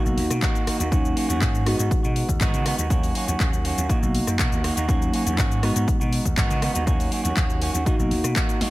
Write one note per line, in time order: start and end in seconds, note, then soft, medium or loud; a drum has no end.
0.00 0.87 A#3 medium
0.00 0.88 D#4 medium
0.00 0.88 F#4 medium
0.05 0.17 B1 loud
0.05 0.42 A#3 medium
0.05 0.42 D#4 medium
0.05 0.42 F#4 medium
0.05 shaker soft
0.18 0.27 D#2 medium
0.18 open hi-hat loud
0.30 0.39 B2 loud
0.30 cross-stick medium
0.30 closed hi-hat soft
0.30 shaker medium
0.42 0.65 D#3 loud
0.42 0.66 A#3 loud
0.42 0.67 D#4 loud
0.42 0.68 F#4 loud
0.42 kick loud
0.42 clap loud
0.42 closed hi-hat medium
0.42 shaker medium
0.55 closed hi-hat soft
0.55 shaker soft
0.66 0.80 D#3 medium
0.66 0.80 A#3 medium
0.66 0.80 D#4 medium
0.66 0.78 F#4 medium
0.66 muted slap bass stroke soft
0.66 cross-stick medium
0.66 open hi-hat loud
0.79 1.11 D#2 medium
0.79 0.90 A#3 medium
0.79 0.92 D#4 medium
0.79 0.92 F#4 medium
0.79 closed hi-hat medium
0.79 shaker medium
0.91 1.61 F#3 medium
0.91 1.15 A#3 medium
0.91 1.62 A#3 medium
0.91 1.62 C#4 medium
0.91 1.17 C#4 medium
0.91 1.62 D#4 medium
0.91 1.18 F#4 loud
0.91 kick loud
0.91 closed hi-hat medium
0.91 shaker medium
1.05 shaker soft
1.16 1.29 A#3 medium
1.16 1.30 C#4 medium
1.16 1.28 F#4 medium
1.16 open hi-hat loud
1.29 1.41 D#2 medium
1.29 1.41 C#4 medium
1.29 1.41 F#4 medium
1.29 closed hi-hat soft
1.29 shaker medium
1.41 1.73 G#2 loud
1.41 1.66 A#3 medium
1.41 1.67 C#4 loud
1.41 1.67 F#4 loud
1.41 kick loud
1.41 clap loud
1.41 closed hi-hat medium
1.41 shaker medium
1.55 shaker soft
1.66 1.79 D#3 medium
1.66 2.85 G#3 medium
1.66 2.86 B3 medium
1.66 1.80 B3 medium
1.66 2.86 D#4 medium
1.66 1.79 D#4 medium
1.66 2.86 F#4 loud
1.66 1.77 F#4 medium
1.66 cross-stick medium
1.66 open hi-hat loud
1.79 1.88 G#2 medium
1.79 2.05 B3 medium
1.79 2.04 D#4 medium
1.79 2.02 F#4 medium
1.79 closed hi-hat medium
1.79 shaker medium
1.91 kick loud
1.91 closed hi-hat medium
1.91 shaker medium
2.03 2.22 B2 loud
2.03 2.40 B3 soft
2.03 2.41 D#4 medium
2.03 2.40 F#4 medium
2.03 shaker soft
2.16 open hi-hat loud
2.29 2.37 D#2 medium
2.29 kick medium
2.29 closed hi-hat soft
2.29 shaker medium
2.40 2.50 G#1 medium
2.40 2.64 D#3 loud
2.40 2.65 B3 medium
2.40 2.66 D#4 loud
2.40 2.66 F#4 loud
2.40 kick loud
2.40 clap loud
2.40 closed hi-hat medium
2.40 shaker medium
2.54 2.71 C#3 medium
2.54 closed hi-hat soft
2.54 shaker soft
2.65 2.78 D#3 medium
2.65 2.79 B3 medium
2.65 2.78 D#4 medium
2.65 2.77 F#4 medium
2.65 cross-stick medium
2.65 open hi-hat loud
2.78 3.10 D#2 medium
2.78 2.90 B3 medium
2.78 2.91 D#4 medium
2.78 2.90 F#4 medium
2.78 closed hi-hat soft
2.78 shaker medium
2.90 3.85 F#3 medium
2.90 3.13 A#3 medium
2.90 3.85 A#3 medium
2.90 3.85 C#4 medium
2.90 3.15 C#4 loud
2.90 3.85 D#4 medium
2.90 3.16 F#4 medium
2.90 kick loud
2.90 closed hi-hat medium
2.90 shaker medium
3.03 open hi-hat medium
3.03 shaker soft
3.15 3.28 A#3 medium
3.15 3.29 C#4 medium
3.15 3.26 F#4 medium
3.15 open hi-hat loud
3.27 3.37 D#2 loud
3.27 3.40 C#4 soft
3.27 3.40 F#4 medium
3.27 closed hi-hat medium
3.27 shaker medium
3.40 3.72 D#2 loud
3.40 3.53 A#3 medium
3.40 3.53 C#4 loud
3.40 3.51 F#4 loud
3.40 kick loud
3.40 clap loud
3.40 closed hi-hat medium
3.40 shaker medium
3.52 3.65 C#4 soft
3.52 3.64 F#4 medium
3.52 shaker soft
3.64 3.88 A#3 medium
3.64 3.90 C#4 medium
3.64 3.90 F#4 medium
3.64 open hi-hat loud
3.78 3.86 D#2 medium
3.78 closed hi-hat medium
3.78 shaker medium
3.89 4.02 D#3 medium
3.89 4.84 A#3 medium
3.89 4.03 A#3 medium
3.89 4.84 D#4 medium
3.89 4.02 D#4 medium
3.89 4.85 F#4 medium
3.89 4.00 F#4 medium
3.89 kick loud
3.89 closed hi-hat medium
3.89 shaker medium
4.02 4.20 B1 loud
4.02 4.38 A#3 medium
4.02 4.39 D#4 medium
4.02 4.39 F#4 medium
4.02 shaker soft
4.15 open hi-hat loud
4.27 4.36 F#2 medium
4.27 cross-stick medium
4.27 closed hi-hat medium
4.27 shaker medium
4.38 4.48 B2 medium
4.38 4.62 D#3 loud
4.38 4.63 A#3 loud
4.38 4.64 D#4 loud
4.38 4.65 F#4 loud
4.38 kick loud
4.38 clap loud
4.38 closed hi-hat medium
4.38 shaker medium
4.52 4.69 D#2 medium
4.52 closed hi-hat soft
4.52 shaker soft
4.63 4.76 D#3 medium
4.63 4.77 A#3 medium
4.63 4.76 D#4 medium
4.63 4.75 F#4 medium
4.63 cross-stick medium
4.63 open hi-hat loud
4.76 5.08 D#2 medium
4.76 4.87 A#3 medium
4.76 4.89 D#4 medium
4.76 4.88 F#4 medium
4.76 closed hi-hat medium
4.76 shaker medium
4.88 5.58 F#3 medium
4.88 5.11 A#3 loud
4.88 5.58 A#3 medium
4.88 5.58 C#4 medium
4.88 5.13 C#4 medium
4.88 5.59 D#4 medium
4.88 5.14 F#4 loud
4.88 kick loud
4.88 closed hi-hat medium
4.88 shaker medium
5.02 shaker soft
5.13 5.26 A#3 medium
5.13 5.27 C#4 medium
5.13 5.24 F#4 medium
5.13 open hi-hat loud
5.25 5.38 D#2 loud
5.25 5.37 C#4 medium
5.25 5.38 F#4 medium
5.25 closed hi-hat medium
5.25 shaker medium
5.37 5.70 G#2 loud
5.37 5.63 A#3 medium
5.37 5.63 C#4 loud
5.37 5.64 F#4 loud
5.37 kick loud
5.37 clap loud
5.37 closed hi-hat medium
5.37 shaker medium
5.52 shaker soft
5.62 5.75 D#3 medium
5.62 6.82 G#3 medium
5.62 6.82 B3 medium
5.62 5.76 B3 medium
5.62 6.82 D#4 medium
5.62 5.75 D#4 medium
5.62 6.83 F#4 loud
5.62 5.74 F#4 medium
5.62 cross-stick medium
5.62 open hi-hat medium
5.75 5.84 G#2 medium
5.75 6.02 B3 soft
5.75 6.00 D#4 medium
5.75 5.99 F#4 medium
5.75 closed hi-hat medium
5.75 shaker medium
5.88 kick loud
5.88 closed hi-hat medium
5.88 shaker medium
6.00 6.18 B2 loud
6.00 6.36 B3 soft
6.00 6.37 D#4 medium
6.00 6.37 F#4 medium
6.00 shaker soft
6.13 open hi-hat loud
6.25 6.34 D#2 loud
6.25 kick medium
6.25 closed hi-hat medium
6.25 shaker medium
6.37 6.47 G#1 medium
6.37 6.60 D#3 medium
6.37 6.61 B3 loud
6.37 6.62 D#4 medium
6.37 6.63 F#4 loud
6.37 kick loud
6.37 clap loud
6.37 closed hi-hat medium
6.37 shaker medium
6.50 6.68 C#3 loud
6.50 closed hi-hat soft
6.50 shaker soft
6.61 6.75 D#3 medium
6.61 6.75 B3 medium
6.61 6.74 D#4 medium
6.61 6.73 F#4 medium
6.61 cross-stick medium
6.61 open hi-hat loud
6.74 7.06 D#2 medium
6.74 6.86 B3 medium
6.74 6.87 D#4 medium
6.74 6.87 F#4 medium
6.74 closed hi-hat medium
6.74 shaker medium
6.86 7.81 F#3 medium
6.86 7.10 A#3 medium
6.86 7.81 A#3 medium
6.86 7.11 C#4 medium
6.86 7.82 C#4 medium
6.86 7.82 D#4 medium
6.86 7.13 F#4 loud
6.86 kick loud
6.86 closed hi-hat medium
6.86 shaker medium
7.00 open hi-hat medium
7.00 shaker soft
7.11 7.24 A#3 medium
7.11 7.25 C#4 medium
7.11 7.22 F#4 medium
7.11 open hi-hat loud
7.24 7.33 D#2 loud
7.24 7.36 C#4 medium
7.24 7.36 F#4 medium
7.24 closed hi-hat medium
7.24 shaker medium
7.36 7.68 D#2 loud
7.36 7.59 A#3 medium
7.36 7.61 C#4 medium
7.36 7.62 F#4 loud
7.36 kick loud
7.36 clap loud
7.36 closed hi-hat medium
7.36 shaker medium
7.50 shaker soft
7.60 7.74 A#3 medium
7.60 7.75 C#4 medium
7.60 7.72 F#4 medium
7.60 open hi-hat loud
7.73 7.83 D#2 medium
7.73 7.87 C#4 soft
7.73 7.86 F#4 medium
7.73 closed hi-hat medium
7.73 shaker medium
7.85 7.99 D#3 medium
7.85 8.70 A#3 medium
7.85 7.99 A#3 medium
7.85 8.70 D#4 medium
7.85 7.99 D#4 loud
7.85 8.70 F#4 medium
7.85 7.97 F#4 medium
7.85 kick loud
7.85 closed hi-hat medium
7.85 shaker medium
7.98 8.11 B1 loud
7.98 8.35 A#3 medium
7.98 8.35 D#4 medium
7.98 8.35 F#4 medium
7.98 shaker soft
8.11 8.20 D#2 medium
8.11 open hi-hat loud
8.24 8.33 B2 medium
8.24 cross-stick medium
8.24 closed hi-hat medium
8.24 shaker medium
8.35 8.59 D#3 medium
8.35 8.60 A#3 loud
8.35 8.61 D#4 loud
8.35 8.61 F#4 loud
8.35 kick loud
8.35 clap loud
8.35 closed hi-hat medium
8.35 shaker medium
8.49 closed hi-hat soft
8.49 shaker soft
8.60 8.70 D#3 medium
8.60 8.70 A#3 medium
8.60 8.70 D#4 medium
8.60 8.70 F#4 medium
8.60 muted slap bass stroke soft
8.60 snare medium
8.60 open hi-hat loud